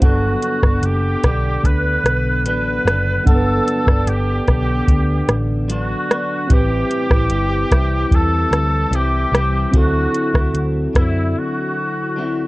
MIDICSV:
0, 0, Header, 1, 6, 480
1, 0, Start_track
1, 0, Key_signature, 1, "major"
1, 0, Tempo, 808625
1, 13, Time_signature, 4, 2, 24, 8
1, 7405, End_track
2, 0, Start_track
2, 0, Title_t, "Trumpet"
2, 0, Program_c, 0, 56
2, 22, Note_on_c, 0, 66, 79
2, 505, Note_on_c, 0, 67, 88
2, 514, Note_off_c, 0, 66, 0
2, 983, Note_on_c, 0, 71, 99
2, 992, Note_off_c, 0, 67, 0
2, 1457, Note_off_c, 0, 71, 0
2, 1461, Note_on_c, 0, 71, 92
2, 1915, Note_off_c, 0, 71, 0
2, 1940, Note_on_c, 0, 69, 92
2, 2422, Note_on_c, 0, 67, 94
2, 2431, Note_off_c, 0, 69, 0
2, 3221, Note_off_c, 0, 67, 0
2, 3396, Note_on_c, 0, 66, 87
2, 3878, Note_on_c, 0, 67, 92
2, 3887, Note_off_c, 0, 66, 0
2, 4838, Note_on_c, 0, 69, 93
2, 4847, Note_off_c, 0, 67, 0
2, 5314, Note_on_c, 0, 67, 90
2, 5323, Note_off_c, 0, 69, 0
2, 5787, Note_off_c, 0, 67, 0
2, 5800, Note_on_c, 0, 66, 82
2, 6326, Note_off_c, 0, 66, 0
2, 6513, Note_on_c, 0, 64, 75
2, 6758, Note_on_c, 0, 66, 74
2, 6767, Note_off_c, 0, 64, 0
2, 7405, Note_off_c, 0, 66, 0
2, 7405, End_track
3, 0, Start_track
3, 0, Title_t, "Tine electric piano"
3, 0, Program_c, 1, 4
3, 0, Control_c, 1, 64, 127
3, 0, Note_on_c, 1, 59, 59
3, 6, Note_on_c, 1, 62, 50
3, 15, Note_on_c, 1, 78, 51
3, 20, Control_c, 1, 64, 0
3, 24, Note_on_c, 1, 69, 64
3, 140, Control_c, 1, 64, 127
3, 1902, Note_off_c, 1, 59, 0
3, 1909, Note_off_c, 1, 62, 0
3, 1914, Note_off_c, 1, 78, 0
3, 1918, Note_off_c, 1, 69, 0
3, 1923, Note_on_c, 1, 59, 54
3, 1931, Note_on_c, 1, 62, 54
3, 1941, Note_on_c, 1, 78, 54
3, 1952, Note_on_c, 1, 69, 53
3, 1983, Note_off_c, 1, 69, 0
3, 1991, Note_on_c, 1, 71, 63
3, 3828, Note_off_c, 1, 59, 0
3, 3833, Note_off_c, 1, 62, 0
3, 3838, Note_off_c, 1, 78, 0
3, 3842, Note_on_c, 1, 60, 58
3, 3851, Note_on_c, 1, 64, 55
3, 3859, Note_on_c, 1, 67, 53
3, 3863, Note_off_c, 1, 71, 0
3, 3866, Control_c, 1, 64, 0
3, 3872, Note_on_c, 1, 71, 63
3, 3984, Control_c, 1, 64, 127
3, 5747, Note_off_c, 1, 60, 0
3, 5752, Note_off_c, 1, 64, 0
3, 5756, Note_off_c, 1, 67, 0
3, 5762, Note_off_c, 1, 71, 0
3, 5766, Note_on_c, 1, 60, 56
3, 5777, Note_on_c, 1, 64, 53
3, 5784, Note_on_c, 1, 66, 51
3, 5787, Control_c, 1, 64, 0
3, 5798, Note_on_c, 1, 69, 66
3, 5884, Control_c, 1, 64, 127
3, 7405, Note_off_c, 1, 60, 0
3, 7405, Note_off_c, 1, 64, 0
3, 7405, Note_off_c, 1, 66, 0
3, 7405, Note_off_c, 1, 69, 0
3, 7405, End_track
4, 0, Start_track
4, 0, Title_t, "Clean electric guitar"
4, 0, Program_c, 2, 27
4, 12, Note_on_c, 2, 43, 68
4, 17, Note_on_c, 2, 50, 66
4, 19, Note_on_c, 2, 54, 72
4, 24, Note_on_c, 2, 59, 77
4, 26, Note_on_c, 2, 62, 67
4, 364, Note_off_c, 2, 62, 0
4, 371, Note_on_c, 2, 62, 48
4, 373, Note_off_c, 2, 43, 0
4, 376, Note_off_c, 2, 50, 0
4, 376, Note_off_c, 2, 59, 0
4, 377, Note_off_c, 2, 54, 0
4, 383, Note_on_c, 2, 59, 45
4, 733, Note_off_c, 2, 62, 0
4, 736, Note_on_c, 2, 50, 52
4, 739, Note_off_c, 2, 59, 0
4, 748, Note_on_c, 2, 59, 57
4, 754, Note_on_c, 2, 62, 62
4, 1447, Note_off_c, 2, 50, 0
4, 1454, Note_on_c, 2, 50, 55
4, 1463, Note_off_c, 2, 59, 0
4, 1464, Note_on_c, 2, 54, 59
4, 1466, Note_off_c, 2, 62, 0
4, 1469, Note_on_c, 2, 59, 55
4, 1472, Note_on_c, 2, 62, 60
4, 1694, Note_off_c, 2, 50, 0
4, 1700, Note_off_c, 2, 54, 0
4, 1701, Note_on_c, 2, 50, 57
4, 1703, Note_off_c, 2, 59, 0
4, 1704, Note_off_c, 2, 62, 0
4, 1708, Note_on_c, 2, 54, 54
4, 1714, Note_on_c, 2, 59, 61
4, 1717, Note_on_c, 2, 62, 67
4, 1935, Note_off_c, 2, 50, 0
4, 1939, Note_on_c, 2, 43, 67
4, 1940, Note_off_c, 2, 54, 0
4, 1942, Note_on_c, 2, 50, 67
4, 1943, Note_off_c, 2, 62, 0
4, 1944, Note_off_c, 2, 59, 0
4, 1947, Note_on_c, 2, 54, 70
4, 1950, Note_on_c, 2, 62, 79
4, 1951, Note_on_c, 2, 59, 71
4, 2294, Note_off_c, 2, 62, 0
4, 2299, Note_off_c, 2, 43, 0
4, 2300, Note_off_c, 2, 50, 0
4, 2301, Note_on_c, 2, 62, 51
4, 2302, Note_off_c, 2, 54, 0
4, 2303, Note_off_c, 2, 59, 0
4, 2310, Note_on_c, 2, 59, 43
4, 2658, Note_on_c, 2, 50, 52
4, 2660, Note_off_c, 2, 62, 0
4, 2664, Note_off_c, 2, 59, 0
4, 2672, Note_on_c, 2, 59, 55
4, 2675, Note_on_c, 2, 62, 58
4, 3365, Note_off_c, 2, 50, 0
4, 3372, Note_on_c, 2, 50, 57
4, 3379, Note_off_c, 2, 59, 0
4, 3379, Note_on_c, 2, 54, 57
4, 3382, Note_off_c, 2, 62, 0
4, 3386, Note_on_c, 2, 59, 55
4, 3389, Note_on_c, 2, 62, 60
4, 3610, Note_off_c, 2, 50, 0
4, 3616, Note_off_c, 2, 54, 0
4, 3617, Note_on_c, 2, 50, 59
4, 3621, Note_off_c, 2, 59, 0
4, 3623, Note_on_c, 2, 54, 57
4, 3624, Note_off_c, 2, 62, 0
4, 3628, Note_on_c, 2, 59, 67
4, 3636, Note_on_c, 2, 62, 65
4, 3855, Note_off_c, 2, 50, 0
4, 3857, Note_on_c, 2, 45, 67
4, 3858, Note_on_c, 2, 52, 77
4, 3860, Note_off_c, 2, 54, 0
4, 3862, Note_off_c, 2, 59, 0
4, 3862, Note_on_c, 2, 55, 67
4, 3865, Note_on_c, 2, 60, 78
4, 3866, Note_off_c, 2, 62, 0
4, 3868, Note_on_c, 2, 64, 74
4, 4205, Note_off_c, 2, 64, 0
4, 4212, Note_off_c, 2, 60, 0
4, 4212, Note_on_c, 2, 64, 52
4, 4219, Note_off_c, 2, 45, 0
4, 4219, Note_off_c, 2, 52, 0
4, 4219, Note_off_c, 2, 55, 0
4, 4219, Note_on_c, 2, 60, 45
4, 4226, Note_on_c, 2, 55, 42
4, 4572, Note_on_c, 2, 52, 57
4, 4573, Note_off_c, 2, 55, 0
4, 4576, Note_off_c, 2, 64, 0
4, 4577, Note_off_c, 2, 60, 0
4, 4580, Note_on_c, 2, 55, 58
4, 4584, Note_on_c, 2, 60, 66
4, 4592, Note_on_c, 2, 64, 67
4, 5289, Note_off_c, 2, 52, 0
4, 5289, Note_off_c, 2, 55, 0
4, 5291, Note_on_c, 2, 52, 53
4, 5296, Note_on_c, 2, 55, 54
4, 5301, Note_off_c, 2, 60, 0
4, 5303, Note_on_c, 2, 60, 55
4, 5307, Note_off_c, 2, 64, 0
4, 5310, Note_on_c, 2, 64, 57
4, 5521, Note_off_c, 2, 52, 0
4, 5526, Note_off_c, 2, 55, 0
4, 5528, Note_on_c, 2, 52, 59
4, 5533, Note_off_c, 2, 60, 0
4, 5533, Note_on_c, 2, 55, 61
4, 5540, Note_off_c, 2, 64, 0
4, 5540, Note_on_c, 2, 60, 63
4, 5547, Note_on_c, 2, 64, 62
4, 5774, Note_off_c, 2, 52, 0
4, 5776, Note_off_c, 2, 55, 0
4, 5777, Note_on_c, 2, 50, 62
4, 5778, Note_off_c, 2, 60, 0
4, 5779, Note_off_c, 2, 64, 0
4, 5781, Note_on_c, 2, 54, 69
4, 5785, Note_on_c, 2, 60, 72
4, 5786, Note_on_c, 2, 64, 75
4, 6127, Note_off_c, 2, 64, 0
4, 6134, Note_on_c, 2, 64, 51
4, 6136, Note_off_c, 2, 60, 0
4, 6138, Note_off_c, 2, 50, 0
4, 6140, Note_off_c, 2, 54, 0
4, 6143, Note_on_c, 2, 60, 43
4, 6152, Note_on_c, 2, 54, 39
4, 6490, Note_on_c, 2, 50, 53
4, 6494, Note_off_c, 2, 54, 0
4, 6496, Note_off_c, 2, 60, 0
4, 6496, Note_off_c, 2, 64, 0
4, 6501, Note_on_c, 2, 54, 55
4, 6503, Note_on_c, 2, 60, 56
4, 6510, Note_on_c, 2, 64, 57
4, 7216, Note_off_c, 2, 50, 0
4, 7219, Note_off_c, 2, 60, 0
4, 7219, Note_on_c, 2, 50, 52
4, 7223, Note_off_c, 2, 64, 0
4, 7224, Note_off_c, 2, 54, 0
4, 7226, Note_on_c, 2, 54, 50
4, 7231, Note_on_c, 2, 60, 54
4, 7233, Note_on_c, 2, 64, 58
4, 7405, Note_off_c, 2, 50, 0
4, 7405, Note_off_c, 2, 54, 0
4, 7405, Note_off_c, 2, 60, 0
4, 7405, Note_off_c, 2, 64, 0
4, 7405, End_track
5, 0, Start_track
5, 0, Title_t, "Picked electric bass"
5, 0, Program_c, 3, 34
5, 10, Note_on_c, 3, 31, 83
5, 204, Note_off_c, 3, 31, 0
5, 372, Note_on_c, 3, 31, 77
5, 469, Note_off_c, 3, 31, 0
5, 484, Note_on_c, 3, 30, 86
5, 681, Note_off_c, 3, 30, 0
5, 737, Note_on_c, 3, 35, 88
5, 928, Note_off_c, 3, 35, 0
5, 971, Note_on_c, 3, 38, 84
5, 1165, Note_off_c, 3, 38, 0
5, 1211, Note_on_c, 3, 35, 81
5, 1454, Note_off_c, 3, 35, 0
5, 1454, Note_on_c, 3, 33, 77
5, 1647, Note_off_c, 3, 33, 0
5, 1693, Note_on_c, 3, 30, 83
5, 1887, Note_off_c, 3, 30, 0
5, 1938, Note_on_c, 3, 31, 77
5, 2130, Note_off_c, 3, 31, 0
5, 2297, Note_on_c, 3, 31, 81
5, 2393, Note_off_c, 3, 31, 0
5, 2415, Note_on_c, 3, 31, 90
5, 2608, Note_off_c, 3, 31, 0
5, 2659, Note_on_c, 3, 35, 80
5, 2851, Note_off_c, 3, 35, 0
5, 2895, Note_on_c, 3, 38, 84
5, 3089, Note_off_c, 3, 38, 0
5, 3136, Note_on_c, 3, 33, 85
5, 3521, Note_off_c, 3, 33, 0
5, 3858, Note_on_c, 3, 33, 82
5, 4051, Note_off_c, 3, 33, 0
5, 4216, Note_on_c, 3, 33, 86
5, 4314, Note_off_c, 3, 33, 0
5, 4332, Note_on_c, 3, 31, 93
5, 4527, Note_off_c, 3, 31, 0
5, 4580, Note_on_c, 3, 36, 89
5, 4772, Note_off_c, 3, 36, 0
5, 4817, Note_on_c, 3, 40, 89
5, 5010, Note_off_c, 3, 40, 0
5, 5052, Note_on_c, 3, 38, 82
5, 5247, Note_off_c, 3, 38, 0
5, 5289, Note_on_c, 3, 36, 81
5, 5485, Note_off_c, 3, 36, 0
5, 5531, Note_on_c, 3, 36, 76
5, 5726, Note_off_c, 3, 36, 0
5, 5776, Note_on_c, 3, 38, 86
5, 5969, Note_off_c, 3, 38, 0
5, 6137, Note_on_c, 3, 38, 83
5, 6234, Note_off_c, 3, 38, 0
5, 6255, Note_on_c, 3, 38, 75
5, 6448, Note_off_c, 3, 38, 0
5, 6499, Note_on_c, 3, 42, 88
5, 6726, Note_off_c, 3, 42, 0
5, 7405, End_track
6, 0, Start_track
6, 0, Title_t, "Drums"
6, 11, Note_on_c, 9, 42, 66
6, 12, Note_on_c, 9, 36, 104
6, 70, Note_off_c, 9, 42, 0
6, 71, Note_off_c, 9, 36, 0
6, 252, Note_on_c, 9, 42, 45
6, 311, Note_off_c, 9, 42, 0
6, 373, Note_on_c, 9, 36, 90
6, 375, Note_on_c, 9, 37, 83
6, 432, Note_off_c, 9, 36, 0
6, 435, Note_off_c, 9, 37, 0
6, 492, Note_on_c, 9, 42, 61
6, 551, Note_off_c, 9, 42, 0
6, 734, Note_on_c, 9, 42, 45
6, 735, Note_on_c, 9, 36, 81
6, 737, Note_on_c, 9, 37, 88
6, 793, Note_off_c, 9, 42, 0
6, 795, Note_off_c, 9, 36, 0
6, 797, Note_off_c, 9, 37, 0
6, 973, Note_on_c, 9, 36, 71
6, 980, Note_on_c, 9, 42, 57
6, 1033, Note_off_c, 9, 36, 0
6, 1040, Note_off_c, 9, 42, 0
6, 1221, Note_on_c, 9, 42, 51
6, 1222, Note_on_c, 9, 37, 77
6, 1280, Note_off_c, 9, 42, 0
6, 1281, Note_off_c, 9, 37, 0
6, 1459, Note_on_c, 9, 42, 62
6, 1518, Note_off_c, 9, 42, 0
6, 1707, Note_on_c, 9, 37, 89
6, 1707, Note_on_c, 9, 42, 50
6, 1766, Note_off_c, 9, 37, 0
6, 1767, Note_off_c, 9, 42, 0
6, 1939, Note_on_c, 9, 36, 103
6, 1942, Note_on_c, 9, 42, 66
6, 1998, Note_off_c, 9, 36, 0
6, 2002, Note_off_c, 9, 42, 0
6, 2183, Note_on_c, 9, 42, 46
6, 2242, Note_off_c, 9, 42, 0
6, 2298, Note_on_c, 9, 36, 94
6, 2303, Note_on_c, 9, 37, 86
6, 2357, Note_off_c, 9, 36, 0
6, 2362, Note_off_c, 9, 37, 0
6, 2418, Note_on_c, 9, 42, 62
6, 2477, Note_off_c, 9, 42, 0
6, 2657, Note_on_c, 9, 42, 50
6, 2659, Note_on_c, 9, 36, 82
6, 2660, Note_on_c, 9, 37, 87
6, 2716, Note_off_c, 9, 42, 0
6, 2718, Note_off_c, 9, 36, 0
6, 2720, Note_off_c, 9, 37, 0
6, 2894, Note_on_c, 9, 36, 73
6, 2898, Note_on_c, 9, 42, 57
6, 2954, Note_off_c, 9, 36, 0
6, 2957, Note_off_c, 9, 42, 0
6, 3137, Note_on_c, 9, 42, 50
6, 3138, Note_on_c, 9, 37, 80
6, 3197, Note_off_c, 9, 37, 0
6, 3197, Note_off_c, 9, 42, 0
6, 3381, Note_on_c, 9, 42, 66
6, 3440, Note_off_c, 9, 42, 0
6, 3626, Note_on_c, 9, 37, 87
6, 3627, Note_on_c, 9, 42, 51
6, 3686, Note_off_c, 9, 37, 0
6, 3687, Note_off_c, 9, 42, 0
6, 3858, Note_on_c, 9, 42, 65
6, 3859, Note_on_c, 9, 36, 100
6, 3918, Note_off_c, 9, 36, 0
6, 3918, Note_off_c, 9, 42, 0
6, 4100, Note_on_c, 9, 42, 47
6, 4159, Note_off_c, 9, 42, 0
6, 4217, Note_on_c, 9, 36, 90
6, 4219, Note_on_c, 9, 37, 81
6, 4277, Note_off_c, 9, 36, 0
6, 4279, Note_off_c, 9, 37, 0
6, 4332, Note_on_c, 9, 42, 58
6, 4391, Note_off_c, 9, 42, 0
6, 4580, Note_on_c, 9, 36, 83
6, 4580, Note_on_c, 9, 42, 50
6, 4583, Note_on_c, 9, 37, 93
6, 4639, Note_off_c, 9, 36, 0
6, 4639, Note_off_c, 9, 42, 0
6, 4643, Note_off_c, 9, 37, 0
6, 4816, Note_on_c, 9, 36, 81
6, 4822, Note_on_c, 9, 42, 58
6, 4876, Note_off_c, 9, 36, 0
6, 4881, Note_off_c, 9, 42, 0
6, 5062, Note_on_c, 9, 42, 52
6, 5063, Note_on_c, 9, 37, 75
6, 5122, Note_off_c, 9, 42, 0
6, 5123, Note_off_c, 9, 37, 0
6, 5302, Note_on_c, 9, 42, 64
6, 5361, Note_off_c, 9, 42, 0
6, 5547, Note_on_c, 9, 37, 89
6, 5548, Note_on_c, 9, 42, 53
6, 5607, Note_off_c, 9, 37, 0
6, 5608, Note_off_c, 9, 42, 0
6, 5779, Note_on_c, 9, 36, 101
6, 5779, Note_on_c, 9, 42, 61
6, 5838, Note_off_c, 9, 36, 0
6, 5838, Note_off_c, 9, 42, 0
6, 6021, Note_on_c, 9, 42, 43
6, 6081, Note_off_c, 9, 42, 0
6, 6139, Note_on_c, 9, 36, 92
6, 6144, Note_on_c, 9, 37, 87
6, 6199, Note_off_c, 9, 36, 0
6, 6203, Note_off_c, 9, 37, 0
6, 6259, Note_on_c, 9, 42, 60
6, 6319, Note_off_c, 9, 42, 0
6, 6500, Note_on_c, 9, 36, 86
6, 6502, Note_on_c, 9, 42, 48
6, 6506, Note_on_c, 9, 37, 87
6, 6559, Note_off_c, 9, 36, 0
6, 6561, Note_off_c, 9, 42, 0
6, 6565, Note_off_c, 9, 37, 0
6, 7405, End_track
0, 0, End_of_file